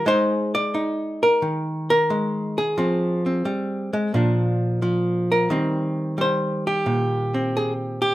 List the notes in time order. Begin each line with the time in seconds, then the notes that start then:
0.06 G#3 D#4 G#4 C5
0.55 D5
0.74 D#4
1.23 A#4
1.42 D#3
1.90 A#4
2.10 G#3
2.58 G#4
2.78 F3 C4
3.26 C4
3.45 G3
3.93 G#3
4.14 A#2 F3 D4
4.82 F3
5.32 A#4
5.50 D#3 G3 C4
6.18 G3 C5
6.67 G4
6.86 A#2
7.34 C4
7.57 G#4
8.02 G4